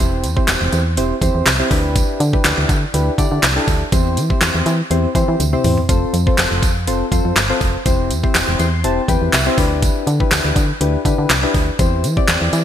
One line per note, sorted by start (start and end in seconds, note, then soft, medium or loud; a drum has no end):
0.00 0.25 E1 loud
0.00 0.25 C4 medium
0.00 0.26 E4 medium
0.00 0.26 G4 medium
0.00 0.26 C5 loud
0.24 0.40 E2 loud
0.24 closed hi-hat medium
0.24 tambourine soft
0.36 0.80 C4 medium
0.36 0.80 E4 medium
0.36 0.80 G4 medium
0.36 0.81 C5 medium
0.36 kick loud
0.48 0.57 E1 medium
0.48 snare loud
0.48 clap loud
0.48 closed hi-hat medium
0.48 tambourine medium
0.61 0.69 E1 loud
0.73 0.99 E2 loud
0.73 closed hi-hat medium
0.73 tambourine medium
0.97 1.13 E1 loud
0.97 1.15 C4 medium
0.97 1.15 E4 medium
0.97 1.15 G4 medium
0.97 1.16 C5 medium
0.97 closed hi-hat loud
0.97 tambourine soft
1.22 1.30 E2 loud
1.22 1.48 C4 medium
1.22 1.49 E4 medium
1.22 1.49 G4 medium
1.22 1.49 C5 loud
1.22 kick medium
1.22 closed hi-hat medium
1.22 tambourine soft
1.35 1.42 E2 loud
1.46 1.62 C2 medium
1.46 snare medium
1.46 clap loud
1.46 closed hi-hat loud
1.46 tambourine medium
1.59 1.71 C4 medium
1.59 1.70 E4 medium
1.59 1.70 G4 medium
1.59 1.71 C5 medium
1.71 2.03 D2 loud
1.71 2.20 D4 loud
1.71 2.20 E4 medium
1.71 2.20 G4 medium
1.71 2.20 B4 loud
1.71 kick medium
1.71 open hi-hat medium
1.96 kick loud
1.96 closed hi-hat loud
1.96 tambourine medium
2.20 2.36 D3 loud
2.20 closed hi-hat medium
2.20 tambourine medium
2.33 2.77 D4 medium
2.33 2.77 E4 medium
2.33 2.77 G4 medium
2.33 2.77 B4 medium
2.33 kick loud
2.44 2.53 D2 loud
2.44 snare loud
2.44 clap loud
2.44 closed hi-hat medium
2.44 tambourine medium
2.58 2.65 D2 loud
2.69 2.85 D3 medium
2.69 kick loud
2.69 closed hi-hat medium
2.69 tambourine medium
2.94 3.10 D2 loud
2.94 3.12 D4 medium
2.94 3.12 E4 medium
2.94 3.12 G4 medium
2.94 3.12 B4 medium
2.94 closed hi-hat loud
2.94 tambourine soft
3.18 3.27 D3 loud
3.18 3.45 D4 medium
3.18 3.45 E4 medium
3.18 3.45 G4 medium
3.18 3.45 D5 loud
3.18 kick medium
3.18 closed hi-hat medium
3.18 tambourine soft
3.32 3.39 D3 loud
3.43 3.59 C2 loud
3.43 snare loud
3.43 clap loud
3.43 closed hi-hat loud
3.43 tambourine medium
3.56 3.83 D4 medium
3.56 3.83 E4 medium
3.56 3.83 G4 medium
3.56 3.83 A4 loud
3.68 3.84 D2 medium
3.68 kick medium
3.68 open hi-hat medium
3.68 tambourine soft
3.92 4.18 E2 loud
3.92 4.19 C4 medium
3.92 4.19 E4 medium
3.92 4.19 G4 medium
3.92 4.19 C5 loud
3.92 kick loud
3.92 closed hi-hat loud
3.92 tambourine medium
4.17 4.33 E3 loud
4.17 closed hi-hat medium
4.17 tambourine medium
4.30 4.74 C4 medium
4.30 4.74 E4 medium
4.30 4.74 G4 medium
4.30 4.74 C5 medium
4.30 kick loud
4.41 4.50 E2 loud
4.41 snare medium
4.41 clap loud
4.41 closed hi-hat medium
4.41 tambourine medium
4.55 4.62 E2 loud
4.66 4.82 E3 medium
4.66 closed hi-hat medium
4.66 tambourine medium
4.91 5.07 E2 loud
4.91 5.09 C4 medium
4.91 5.09 E4 medium
4.91 5.09 G4 medium
4.91 5.09 C5 medium
4.91 closed hi-hat loud
5.15 5.24 E3 loud
5.15 5.42 C4 medium
5.15 5.42 E4 medium
5.15 5.42 G4 medium
5.15 5.42 C5 loud
5.15 kick medium
5.15 closed hi-hat medium
5.15 tambourine medium
5.28 5.36 E3 loud
5.40 5.56 D2 medium
5.40 closed hi-hat loud
5.40 high tom medium
5.40 tambourine medium
5.53 5.79 C4 medium
5.53 5.79 E4 medium
5.53 5.79 G4 medium
5.53 5.79 C5 medium
5.53 mid tom medium
5.64 5.80 E2 medium
5.64 mid tom medium
5.64 open hi-hat medium
5.64 tambourine soft
5.77 floor tom medium
5.89 6.05 F1 loud
5.89 6.16 C4 medium
5.89 6.16 F4 medium
5.89 6.16 A4 medium
5.89 6.16 C5 loud
5.89 kick loud
5.89 closed hi-hat loud
5.89 tambourine medium
6.14 6.30 F2 loud
6.14 closed hi-hat medium
6.14 tambourine medium
6.26 6.71 C4 medium
6.26 6.71 F4 medium
6.26 6.71 A4 medium
6.26 6.71 C5 loud
6.26 kick medium
6.38 6.47 F1 loud
6.38 snare loud
6.38 clap loud
6.38 closed hi-hat medium
6.38 tambourine medium
6.51 6.64 F1 loud
6.63 6.89 F2 medium
6.63 kick loud
6.63 closed hi-hat medium
6.63 tambourine medium
6.87 7.03 F1 loud
6.87 7.05 C4 medium
6.87 7.06 F4 medium
6.87 7.06 A4 medium
6.87 7.06 C5 medium
6.87 closed hi-hat loud
6.87 tambourine soft
7.12 7.20 F2 medium
7.12 7.39 C4 medium
7.12 7.39 F4 medium
7.12 7.39 A4 medium
7.12 7.39 C5 loud
7.12 kick medium
7.12 closed hi-hat medium
7.12 tambourine soft
7.25 7.33 F2 medium
7.36 7.53 G1 medium
7.36 snare loud
7.36 clap loud
7.36 closed hi-hat medium
7.36 tambourine medium
7.49 7.76 C4 medium
7.49 7.76 F4 medium
7.49 7.76 A4 medium
7.49 7.76 C5 loud
7.61 7.77 F1 medium
7.61 kick medium
7.61 open hi-hat medium
7.61 tambourine soft
7.86 8.12 E1 loud
7.86 8.12 C4 medium
7.86 8.12 E4 medium
7.86 8.12 G4 medium
7.86 8.13 C5 loud
7.86 kick loud
7.86 closed hi-hat loud
7.86 tambourine medium
8.10 8.26 E2 loud
8.10 closed hi-hat medium
8.10 tambourine soft
8.23 8.67 C4 medium
8.23 8.67 E4 medium
8.23 8.67 G4 medium
8.23 8.68 C5 loud
8.23 kick medium
8.35 8.43 E1 loud
8.35 snare medium
8.35 clap loud
8.35 closed hi-hat medium
8.35 tambourine medium
8.48 8.55 E1 loud
8.59 8.86 E2 loud
8.59 8.82 C6 medium
8.59 closed hi-hat medium
8.59 tambourine medium
8.84 9.00 E1 loud
8.84 9.02 C4 medium
8.84 9.02 E4 medium
8.84 9.02 G4 medium
8.84 9.02 C5 medium
8.84 9.07 A5 medium
8.84 closed hi-hat loud
9.08 9.17 E2 loud
9.08 9.35 C4 medium
9.08 9.35 E4 medium
9.08 9.35 G4 medium
9.08 9.36 B4 loud
9.08 9.32 G5 medium
9.08 kick medium
9.08 closed hi-hat medium
9.08 tambourine soft
9.22 9.29 E2 loud
9.33 9.49 C2 loud
9.33 9.56 E5 medium
9.33 snare loud
9.33 clap loud
9.33 closed hi-hat medium
9.33 tambourine medium
9.46 9.58 C4 medium
9.46 9.57 E4 medium
9.46 9.57 G4 medium
9.46 9.58 C5 loud
9.58 9.90 D2 loud
9.58 10.07 D4 loud
9.58 10.07 E4 medium
9.58 10.07 G4 medium
9.58 10.07 B4 loud
9.58 9.81 D5 medium
9.58 kick medium
9.58 open hi-hat medium
9.58 tambourine soft
9.82 kick loud
9.82 closed hi-hat loud
9.82 tambourine medium
10.07 10.23 D3 loud
10.07 closed hi-hat medium
10.07 tambourine soft
10.20 10.64 D4 medium
10.20 10.64 E4 medium
10.20 10.64 G4 medium
10.20 10.64 B4 medium
10.20 kick loud
10.31 10.40 D2 loud
10.31 snare loud
10.31 clap loud
10.31 closed hi-hat medium
10.31 tambourine medium
10.45 10.52 D2 loud
10.56 10.72 D3 medium
10.56 kick loud
10.56 closed hi-hat medium
10.56 tambourine medium
10.81 10.97 D2 loud
10.81 10.99 D4 medium
10.81 10.99 E4 medium
10.81 10.99 G4 medium
10.81 10.99 B4 medium
10.81 closed hi-hat loud
11.05 11.14 D3 loud
11.05 11.32 D4 medium
11.05 11.32 E4 medium
11.05 11.32 G4 medium
11.05 11.32 B4 loud
11.05 kick medium
11.05 closed hi-hat medium
11.05 tambourine medium
11.18 11.26 D3 loud
11.30 11.46 C2 medium
11.30 snare loud
11.30 clap loud
11.30 closed hi-hat loud
11.30 tambourine medium
11.43 11.69 D4 medium
11.43 11.69 E4 medium
11.43 11.70 G4 medium
11.43 11.70 B4 medium
11.54 11.71 D2 medium
11.54 kick medium
11.54 open hi-hat medium
11.54 tambourine soft
11.79 12.05 E2 loud
11.79 12.06 C4 medium
11.79 12.06 E4 medium
11.79 12.06 G4 medium
11.79 12.06 C5 loud
11.79 kick loud
11.79 closed hi-hat loud
11.79 tambourine medium
12.04 12.20 E3 loud
12.04 closed hi-hat medium
12.04 tambourine medium
12.17 12.61 C4 medium
12.17 12.61 E4 medium
12.17 12.61 G4 medium
12.17 12.61 D5 medium
12.17 kick medium
12.28 12.37 E2 loud
12.28 snare medium
12.28 clap loud
12.28 closed hi-hat medium
12.28 tambourine medium
12.41 12.49 E2 loud
12.53 12.64 E3 loud
12.53 closed hi-hat medium
12.53 tambourine medium